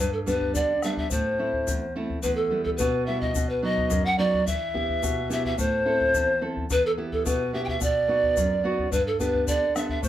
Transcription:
0.00 G2 B4
0.13 A4
0.26 G3 B3 D4 B4, bombo low, shaker
0.41 bombo low
0.55 D3 D5, bombo low, shaker
0.82 G3 B3 D4 E5, bombo rim, shaker
0.97 E5, bombo low
1.11 A2 C5, bombo low, shaker
1.39 A3 C4 E4
1.53 bombo low
1.67 E2, bombo low, shaker
1.96 A3 C4 E4
2.10 bombo low
2.22 E2 B4, bombo low, shaker
2.36 A4
2.51 G3 B3 E4
2.64 A4, bombo low
2.77 B2 B4, bombo low, shaker
3.06 G3 B3 E4 E5
3.21 D#5, bombo low
3.35 B2, bombo low, shaker
3.49 B4
3.62 F#3 B3 D#4 D#5
3.78 bombo low
3.90 F#2, bombo low, shaker
4.05 F#5
4.18 F#3 B3 D#4 D5
4.34 bombo low
4.47 E3 E5, bombo low, shaker
4.74 B3 E4 G4, bombo low
4.89 bombo low
5.03 B2, bombo low, shaker
5.29 B3 E4 G4 E5, shaker
5.45 E5, bombo low
5.58 A2 C5, bombo low, shaker
5.85 C4 E4 A4
6.00 bombo low
6.14 E2, bombo low, shaker
6.41 C4 E4 A4
6.57 bombo low
6.70 E2 B4, bombo low, shaker
6.86 A4
6.97 B3 E4 G4
7.12 A4, bombo low
7.26 B2 B4, bombo low, shaker
7.53 B3 E4 G4 E5
7.64 G5, bombo low
7.69 E5
7.81 B2 D5, bombo low, shaker
8.08 B3 D#4 F#4
8.23 bombo low
8.37 F#2, bombo low, shaker
8.64 B3 D#4 F#4
8.79 bombo low
8.92 G2 B4, bombo low, shaker
9.07 A4
9.20 B3 D4 G4 B4, bombo low, shaker
9.34 bombo low
9.47 D3 D5, bombo low, shaker
9.75 B3 D4 G4 E5, bombo rim, shaker
9.89 E5, bombo low
10.03 A2 C5, bombo low, shaker

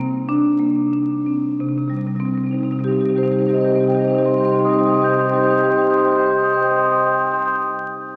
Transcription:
Already playing: C3 A#3
0.00 C4
0.29 D4
0.60 A#3
0.93 D4
1.26 C4
1.61 C3
1.69 C3
1.78 C3
1.87 C3 G3
1.97 C3 G3
2.06 C3 G3
2.15 C3 G3
2.20 C4
2.25 C3 G3 C4
2.33 C3 G3
2.38 C4
2.43 C3 G3 C4
2.51 C3 G3 C4 D#4
2.59 G3 D#4
2.63 C3 C4 D#4
2.71 C3 G3 C4 D#4
2.79 C3 G3 C4 D#4
2.84 G3 D#4 G4
2.89 C3 C4 G4
2.94 G3 C4 D#4
3.00 C3 D#4 G4
3.05 G3 C4 G4
3.10 C3 D#4
3.14 G3 C4 D#4 G4 C5
3.19 C3 G3
3.23 C4 D#4 G4 C5
3.27 C3
3.31 G3 C4 D#4 G4 C5
3.37 C3 G3 D#4 C5
3.41 C4 G4
3.46 C3 G3 D#4 G4 C5
3.50 C4 C5 D#5
3.54 C3 G3 C4 D#4 G4
3.61 D#4 G4 C5 D#5
3.65 C3 G3 C4 C5 D#5
3.70 G3 D#4 G4
3.75 C3 C4 D#4 C5 D#5
3.80 C3 G3 C4 G4 C5 D#5
3.84 D#4 G4 G5
3.90 G3 C4 D#4 C5 D#5
3.94 C3 G4 C5 D#5 G5
3.99 G3 C4 D#4 G4 G5
4.04 C3 C5 D#5
4.08 G3 C4 D#4 G4 C5 G5
4.13 C3 G3 D#4 D#5 G5
4.18 C4 G4 C5 D#5
4.22 C3 G3 D#4 G4 C5 G5 C6
4.28 C4 D#4 D#5 G5
4.32 C3 G3 G4 C5 D#5 C6
4.36 C4 D#4 C5 G5
4.40 G3 D#4 G4 D#5 G5 C6
4.45 C3 C4 G4 C5 C6
4.50 G3 C4 D#4 C5 D#5 G5 C6
4.55 C3 G4 C5 D#5 C6
4.59 G3 C4 D#4 G4 G5
4.64 C3 D#4 C5 D#5 G5 C6 D#6
4.69 G3 C4 G4 D#5 G5 C6 D#6
4.73 C3 D#4 C5
4.78 G3 C4 G4 C5 D#5 G5 C6 D#6
4.82 C3 D#4 G4 D#5 C6 D#6
4.87 G3 C4 D#4 C5 G5
4.91 C3 G3 C4 G4 C5 D#5 G5 C6 D#6
4.98 D#4 D#5 C6 D#6
5.02 C3 G3 C4 D#4 G4 C5 D#5 G5 C6 D#6 G6
5.08 G3 C4 G4 C5 G5 C6 D#6 G6
5.12 D#4 C5 D#5
5.17 G3 C4 D#4 G4 D#5 G5 C6 D#6 G6
5.21 C5 G5 C6 D#6 G6
5.26 G3 C4 D#4 G4 C5 D#5
5.31 G4 G5 C6 D#6 G6
5.35 G3 C4 D#4 C5 D#5 G5 C6 D#6 G6
5.42 D#4 G4 C5 D#5 C6 D#6 G6
5.47 C4 D#4 G4 C5 G5 C6
5.51 D#5 G5 D#6 G6
5.56 C4 D#4 G4 C5 D#5 C6 D#6 G6
5.62 C4 D#4 G4 C5 G5 C6 D#6 G6
5.66 D#5 G5 C6 G6
5.71 C4 D#4 G4 C5 D#5 D#6
5.76 G4 C5 G5 C6 D#6 G6
5.82 D#4 C5 D#5 G5 C6 D#6 G6
5.86 G4 D#5 C6
5.90 D#4 G4 C5 G5 D#6 G6
5.94 D#4 C5 D#5 G5 C6 D#6 G6
6.00 G4 C6 G6
6.04 D#4 C5 D#5 G5 C6 D#6
6.08 G4 C5 D#5 G5 D#6 G6
6.14 G4 C6 D#6 G6
6.19 C5 D#5 G5 C6 G6
6.24 G4 C5 D#5 G5 C6 D#6
6.30 G4 C5 D#5 C6 D#6 G6
6.34 G5 D#6 G6
6.40 C5 D#5 G5 C6 G6
6.44 C5 D#5 C6 D#6
6.49 G5 C6 D#6 G6
6.54 C5 D#5 G5 D#6 G6
6.59 C5 D#5 C6 G6
6.63 G5 C6 D#6
6.68 C5 D#5 G5 C6 D#6 G6
6.76 D#5 G5 C6 D#6 G6
6.83 D#5 G5 C6 D#6 G6
6.89 G5 C6 D#6 G6
6.94 D#5 C6
6.98 D#5 G5 C6 D#6 G6
7.04 G5 C6 D#6 G6
7.11 G5 C6 D#6 G6
7.18 G5 C6 D#6 G6
7.25 G5 C6 D#6 G6
7.32 G5 C6 D#6 G6
7.38 G5 C6 D#6 G6
7.46 C6 D#6 G6
7.53 C6 D#6 G6

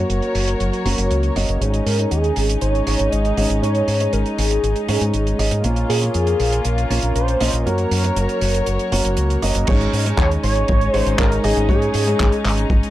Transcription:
Already playing: F#3 A#3 C#4 F#4 A#4 C#5
0.10 F#1, closed hi-hat
0.22 closed hi-hat
0.35 F#1, open hi-hat
0.48 closed hi-hat
0.60 F#1, closed hi-hat
0.73 closed hi-hat
0.85 F#1 A#3 C#4 F#4 C#5, open hi-hat
0.98 F#1, closed hi-hat
1.11 C#2, closed hi-hat
1.23 closed hi-hat
1.36 F#1 A#3 C#4 F#4 D#5, open hi-hat
1.48 F#1, closed hi-hat
1.61 G#1 G#3 C#4 D#4 C#5, closed hi-hat
1.74 closed hi-hat
1.86 G#2 A#4, open hi-hat
1.99 G#3 C#4 D#4 C#5, closed hi-hat
2.11 D#2 G#4, closed hi-hat
2.24 closed hi-hat
2.36 G#1, open hi-hat
2.49 closed hi-hat
2.61 G#1 C#5, closed hi-hat
2.75 closed hi-hat
2.87 G#1 G#3 C#4 D#4 C#5, open hi-hat
2.99 G#1, closed hi-hat
3.12 G#1 D#5, closed hi-hat
3.25 closed hi-hat
3.37 G#1 G#3 C#4 D#4 D#5, open hi-hat
3.50 G#1, closed hi-hat
3.62 G#2 G#3 C#4 D#4 C#5, closed hi-hat
3.75 closed hi-hat
3.88 G#2, open hi-hat
4.00 G#3 C#4 D#4 C#5, closed hi-hat
4.13 G#1 A#4, closed hi-hat
4.26 closed hi-hat
4.38 G#1 G#4, open hi-hat
4.51 closed hi-hat
4.63 G#1, closed hi-hat
4.76 closed hi-hat
4.89 G#2 G#3 C#4 D#4 C#5, open hi-hat
5.01 G#2, closed hi-hat
5.14 G#1, closed hi-hat
5.27 closed hi-hat
5.39 G#1 G#3 C#4 D#4 D#5, open hi-hat
5.51 G#2, closed hi-hat
5.64 A#1 A#3 C#4 F4 C#5, closed hi-hat
5.76 closed hi-hat
5.89 A#2 G#4, open hi-hat
6.02 A#3 C#4 F4 C#5, closed hi-hat
6.14 F2 G#4, closed hi-hat
6.27 closed hi-hat
6.40 A#1, open hi-hat
6.53 closed hi-hat
6.65 A#1 A#4, closed hi-hat
6.78 closed hi-hat
6.90 A#1 A#3 C#4 F4 C#5, open hi-hat
7.02 A#1, closed hi-hat
7.15 A#1 C5, closed hi-hat
7.28 closed hi-hat
7.40 A#1 A#3 C#4 F4 D#5, open hi-hat
7.53 A#1, closed hi-hat
7.66 F#2 F#3 A#3 C#4 F#4 A#4 C#5, closed hi-hat
7.78 closed hi-hat
7.91 F#2, open hi-hat
8.04 A#3 C#4 F#4 C#5, closed hi-hat
8.16 F#1, closed hi-hat
8.29 closed hi-hat
8.41 F#1, open hi-hat
8.54 closed hi-hat
8.66 F#1, closed hi-hat
8.79 closed hi-hat
8.92 F#1 A#3 C#4 F#4 C#5, open hi-hat
9.05 F#1, closed hi-hat
9.17 C#2, closed hi-hat
9.30 closed hi-hat
9.42 F#1 A#3 C#4 F#4 D#5, open hi-hat
9.55 F#1, closed hi-hat
9.67 G#1 G#3 C#4 D#4 C#5, kick, closed hi-hat, crash
9.81 closed hi-hat
9.93 G#2, open hi-hat
10.06 G#3 C#4 D#4 C#5, closed hi-hat
10.18 D#2 C#5, kick, clap, closed hi-hat
10.31 closed hi-hat
10.43 G#1 C#5, open hi-hat
10.56 closed hi-hat
10.68 G#1, kick, closed hi-hat
10.81 closed hi-hat
10.93 G#1 G#3 C#4 D#4 C5 C#5, open hi-hat
11.06 G#1, closed hi-hat
11.19 G#1 A#4, kick, clap, closed hi-hat
11.32 closed hi-hat
11.44 G#1 G#3 C#4 D#4 G#4 D#5, open hi-hat
11.57 G#1, closed hi-hat
11.69 G#2 G#3 C#4 D#4 G#4 C#5, kick, closed hi-hat
11.82 closed hi-hat
11.94 G#2, open hi-hat
12.07 G#3 C#4 D#4 C#5, closed hi-hat
12.20 G#1, kick, clap, closed hi-hat
12.32 closed hi-hat
12.45 G#1, clap, open hi-hat
12.58 closed hi-hat
12.70 G#1, kick, closed hi-hat
12.83 closed hi-hat

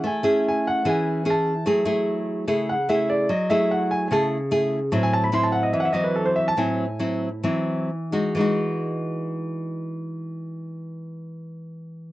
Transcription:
0.04 A3 E5 G#5
0.23 C#4 E4 G#4
0.48 G#5
0.67 F#5
0.85 E3 C#4 E4 G#4
0.89 G#5
1.25 C#4 E4 G#4
1.30 A5
1.66 F#3 A3 E4 G#4
1.85 A3 E4 G#4
2.48 C#3 A3 E4 G#4
2.69 F#5
2.89 A3 E4 G#4 E5
3.10 D5
3.29 F#3 D#5
3.50 A3 E4 G#4 E5
3.71 F#5
3.91 G#5
4.08 C#3 A3 E4 G#5
4.12 G#4 A5
4.51 A3 E4 G#4
4.92 A2 F#3 C4 E4
5.03 G#5
5.13 A5
5.24 B5
5.32 F#3 C4 E4 C6
5.43 A5
5.52 F#5
5.63 D#5
5.73 E3 E5
5.80 F#5
5.85 E5
5.93 F#3 C4 E4 D#5
6.04 B4
6.16 A4
6.26 C5
6.36 E5
6.48 A5
6.57 A2 F#3 C4 E4 G#5
6.99 F#3 C4 E4
7.44 E3 F#3 C4 E4
8.12 G#3 D#4 F#4
8.35 E3 G#3
8.39 D#4 F#4

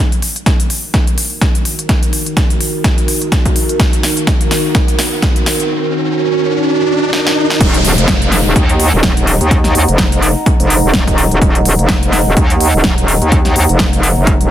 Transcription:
0.00 D#3 D#4 F#4 A#4, riser
0.12 closed hi-hat
0.22 open hi-hat
0.36 closed hi-hat
0.46 kick, snare, closed hi-hat
0.60 closed hi-hat
0.70 open hi-hat
0.94 kick, snare, closed hi-hat
1.07 closed hi-hat
1.18 open hi-hat
1.41 kick, snare, closed hi-hat
1.55 closed hi-hat
1.65 open hi-hat
1.79 closed hi-hat
1.89 kick, snare, closed hi-hat
2.03 closed hi-hat
2.13 open hi-hat
2.26 closed hi-hat
2.37 kick, snare, closed hi-hat
2.50 closed hi-hat
2.61 open hi-hat
2.84 kick, snare, closed hi-hat
2.98 closed hi-hat
3.08 open hi-hat
3.22 closed hi-hat
3.32 kick, snare, closed hi-hat
3.46 kick, closed hi-hat
3.56 open hi-hat
3.69 closed hi-hat
3.80 kick, snare, closed hi-hat
3.93 closed hi-hat
4.03 snare, open hi-hat
4.17 closed hi-hat
4.27 kick, snare, closed hi-hat
4.41 closed hi-hat
4.51 snare, open hi-hat
4.75 kick, snare, closed hi-hat
4.88 closed hi-hat
4.99 snare, open hi-hat
5.22 kick, snare, closed hi-hat
5.36 closed hi-hat
5.46 snare, open hi-hat
5.60 closed hi-hat
7.13 snare
7.27 snare
7.50 snare
7.61 D#1 D#4 D#5 F#5 A#5, kick, closed hi-hat, crash, downlifter
7.74 closed hi-hat
7.84 D#1, open hi-hat
7.98 F1, closed hi-hat
8.08 kick, snare, closed hi-hat
8.22 closed hi-hat
8.32 snare, open hi-hat
8.46 D#1
8.56 D#2, kick, closed hi-hat
8.69 closed hi-hat
8.80 open hi-hat
8.93 D#1
9.03 kick, snare, closed hi-hat
9.17 D#1, closed hi-hat
9.27 open hi-hat
9.41 D#2, closed hi-hat
9.51 kick, closed hi-hat
9.64 snare, closed hi-hat
9.75 D#2, open hi-hat
9.88 F1, closed hi-hat
9.98 kick, snare, closed hi-hat
10.12 closed hi-hat
10.23 open hi-hat
10.46 kick, closed hi-hat
10.60 F1, closed hi-hat
10.70 open hi-hat
10.84 D#1
10.94 kick, snare, closed hi-hat
11.07 D#1, kick, closed hi-hat
11.18 open hi-hat
11.31 D#1, closed hi-hat
11.42 D#1, kick, closed hi-hat
11.55 closed hi-hat
11.65 D#1, open hi-hat
11.79 F1, closed hi-hat
11.89 kick, snare, closed hi-hat
12.03 closed hi-hat
12.12 snare, open hi-hat
12.27 D#1
12.37 D#2, kick, closed hi-hat
12.50 closed hi-hat
12.61 open hi-hat
12.74 D#1
12.84 kick, snare, closed hi-hat
12.98 D#1, closed hi-hat
13.08 open hi-hat
13.22 D#2, closed hi-hat
13.32 kick, closed hi-hat
13.45 snare, closed hi-hat
13.56 D#2, open hi-hat
13.69 F1, closed hi-hat
13.79 kick, snare, closed hi-hat
13.93 closed hi-hat
14.03 open hi-hat
14.17 F#1
14.27 kick, closed hi-hat
14.41 D#1, closed hi-hat

